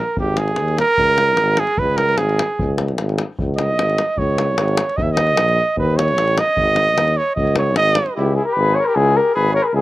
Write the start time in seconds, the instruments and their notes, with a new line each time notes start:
Already playing: trumpet A#4
0.17 tuba G#1, trumpet G4, davul low
0.37 trumpet G#4, davul high
0.48 davul high
0.56 tuba D#2, davul high
0.68 davul high
0.78 trumpet A#4, davul high
0.98 tuba C#2, davul low
1.08 davul high
1.18 davul high
1.28 davul high
1.37 tuba G#1, davul high
1.57 trumpet G#4, davul high
1.67 davul high
1.77 tuba C#2, trumpet B4, davul low
1.97 trumpet A#4, davul high
2.09 davul high
2.18 tuba G#1, trumpet G#4, davul high
2.29 davul high
2.39 davul high
2.59 tuba C#2, davul low
2.78 davul high
2.88 davul high
2.98 tuba G#1, davul high
3.09 davul high
3.18 davul high
3.39 tuba C#2, davul low
3.57 trumpet D#5, davul high
3.78 tuba G#1, davul high
3.90 davul high
3.98 davul high
4.17 tuba C#2, trumpet C#5, davul low
4.38 davul high
4.58 tuba G#1, davul high
4.68 davul high
4.77 davul high
4.89 davul high
4.97 tuba D#2, trumpet D#5, davul low
5.02 trumpet E5
5.12 trumpet D#5
5.17 davul high
5.27 davul high
5.37 tuba A#1, davul high
5.49 davul high
5.76 tuba D#2, trumpet B4, davul low
5.97 trumpet C#5, davul high
6.08 davul high
6.17 tuba A1, davul high
6.28 davul high
6.38 trumpet D#5, davul high
6.57 tuba G#1, davul low
6.76 davul high
6.88 davul high
6.97 tuba D#2, davul high
7.08 davul high
7.17 trumpet C#5
7.35 tuba C#2, trumpet D#5, davul low
7.47 davul high
7.56 trumpet C#5, davul high
7.76 tuba G#1, trumpet D#5, davul high
7.95 davul high
8.06 davul high
8.14 tuba C#2, trumpet E4, flugelhorn G4
8.35 trumpet E4, flugelhorn G#4
8.45 trumpet G4, flugelhorn A#4
8.53 tuba G#1, flugelhorn B4
8.61 trumpet G#4
8.75 flugelhorn C#5
8.80 trumpet A#4
8.85 trumpet G4, flugelhorn A#4
8.95 tuba C#2, trumpet E4, flugelhorn G#4
9.16 trumpet G4, flugelhorn A#4
9.34 tuba G#1, trumpet G#4, flugelhorn B4
9.54 trumpet A#4, flugelhorn C#5
9.63 trumpet G#4, flugelhorn A#4 B4
9.73 tuba C#2, trumpet E4, flugelhorn G#4